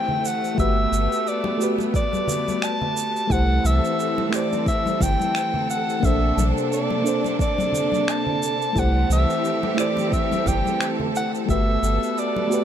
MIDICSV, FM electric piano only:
0, 0, Header, 1, 2, 480
1, 0, Start_track
1, 0, Tempo, 681818
1, 407, Time_signature, 4, 2, 24, 8
1, 8899, End_track
2, 0, Start_track
2, 0, Title_t, "FM electric piano"
2, 0, Program_c, 0, 5
2, 0, Control_c, 0, 64, 127
2, 0, Note_on_c, 0, 57, 79
2, 0, Note_on_c, 0, 64, 68
2, 0, Note_on_c, 0, 67, 67
2, 0, Note_on_c, 0, 72, 81
2, 372, Note_off_c, 0, 57, 0
2, 379, Note_off_c, 0, 64, 0
2, 384, Note_on_c, 0, 57, 79
2, 386, Note_off_c, 0, 67, 0
2, 393, Note_off_c, 0, 72, 0
2, 400, Note_on_c, 0, 66, 68
2, 415, Control_c, 0, 64, 0
2, 416, Note_on_c, 0, 67, 67
2, 429, Note_on_c, 0, 71, 85
2, 535, Control_c, 0, 64, 127
2, 1090, Note_off_c, 0, 57, 0
2, 1099, Note_off_c, 0, 66, 0
2, 1106, Note_off_c, 0, 67, 0
2, 1109, Note_on_c, 0, 57, 74
2, 1113, Note_off_c, 0, 71, 0
2, 1122, Note_on_c, 0, 66, 71
2, 1139, Note_on_c, 0, 67, 67
2, 1152, Note_on_c, 0, 71, 79
2, 2293, Note_off_c, 0, 57, 0
2, 2299, Note_off_c, 0, 66, 0
2, 2305, Note_on_c, 0, 57, 79
2, 2308, Note_off_c, 0, 67, 0
2, 2315, Note_off_c, 0, 71, 0
2, 2318, Note_on_c, 0, 64, 70
2, 2333, Note_on_c, 0, 67, 67
2, 2336, Control_c, 0, 64, 0
2, 2350, Note_on_c, 0, 72, 78
2, 2467, Control_c, 0, 64, 127
2, 3011, Note_off_c, 0, 57, 0
2, 3017, Note_off_c, 0, 64, 0
2, 3022, Note_on_c, 0, 57, 72
2, 3025, Note_off_c, 0, 67, 0
2, 3033, Note_off_c, 0, 72, 0
2, 3036, Note_on_c, 0, 64, 69
2, 3051, Note_on_c, 0, 67, 71
2, 3067, Note_on_c, 0, 72, 85
2, 4209, Note_off_c, 0, 57, 0
2, 4216, Note_off_c, 0, 64, 0
2, 4224, Note_off_c, 0, 67, 0
2, 4224, Note_on_c, 0, 58, 80
2, 4232, Note_off_c, 0, 72, 0
2, 4240, Note_on_c, 0, 62, 72
2, 4256, Control_c, 0, 64, 0
2, 4256, Note_on_c, 0, 69, 70
2, 4269, Note_on_c, 0, 72, 85
2, 4390, Control_c, 0, 64, 127
2, 4930, Note_off_c, 0, 58, 0
2, 4938, Note_off_c, 0, 62, 0
2, 4943, Note_on_c, 0, 58, 79
2, 4946, Note_off_c, 0, 69, 0
2, 4953, Note_off_c, 0, 72, 0
2, 4958, Note_on_c, 0, 62, 68
2, 4971, Note_on_c, 0, 69, 67
2, 4986, Note_on_c, 0, 72, 78
2, 6130, Note_off_c, 0, 58, 0
2, 6137, Note_off_c, 0, 62, 0
2, 6144, Note_off_c, 0, 69, 0
2, 6145, Note_on_c, 0, 57, 74
2, 6151, Note_off_c, 0, 72, 0
2, 6159, Note_on_c, 0, 64, 69
2, 6175, Control_c, 0, 64, 0
2, 6175, Note_on_c, 0, 67, 69
2, 6188, Note_on_c, 0, 72, 86
2, 6309, Control_c, 0, 64, 127
2, 6851, Note_off_c, 0, 57, 0
2, 6858, Note_off_c, 0, 64, 0
2, 6861, Note_on_c, 0, 57, 78
2, 6866, Note_off_c, 0, 67, 0
2, 6873, Note_off_c, 0, 72, 0
2, 6876, Note_on_c, 0, 64, 64
2, 6889, Note_on_c, 0, 67, 67
2, 6903, Note_on_c, 0, 72, 83
2, 8049, Note_off_c, 0, 57, 0
2, 8056, Note_off_c, 0, 64, 0
2, 8063, Note_off_c, 0, 67, 0
2, 8065, Note_on_c, 0, 57, 70
2, 8070, Note_off_c, 0, 72, 0
2, 8079, Note_on_c, 0, 66, 66
2, 8094, Note_on_c, 0, 67, 64
2, 8096, Control_c, 0, 64, 0
2, 8108, Note_on_c, 0, 71, 79
2, 8200, Control_c, 0, 64, 127
2, 8771, Note_off_c, 0, 57, 0
2, 8778, Note_off_c, 0, 66, 0
2, 8782, Note_on_c, 0, 57, 74
2, 8785, Note_off_c, 0, 67, 0
2, 8792, Note_off_c, 0, 71, 0
2, 8797, Note_on_c, 0, 66, 75
2, 8811, Note_on_c, 0, 67, 70
2, 8825, Note_on_c, 0, 71, 81
2, 8899, Note_off_c, 0, 57, 0
2, 8899, Note_off_c, 0, 66, 0
2, 8899, Note_off_c, 0, 67, 0
2, 8899, Note_off_c, 0, 71, 0
2, 8899, End_track
0, 0, End_of_file